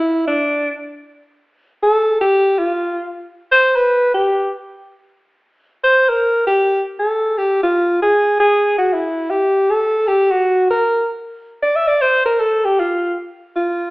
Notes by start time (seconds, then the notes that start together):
Already playing: E4
0.27 D4
1.83 A4
2.21 G4
2.59 F4
3.52 C5
3.76 B4
4.14 G4
5.84 C5
6.09 A#4
6.47 G4
6.99 A4
7.38 G4
7.63 F4
8.02 G#4
8.40 G#4
8.78 F#4
8.93 E4
9.30 G4
9.70 A4
10.07 G4
10.31 F#4
10.70 A#4
11.62 D5
11.76 E5
11.88 D5
12.01 C5
12.26 A#4
12.40 A4
12.65 G4
12.80 F4
13.56 F4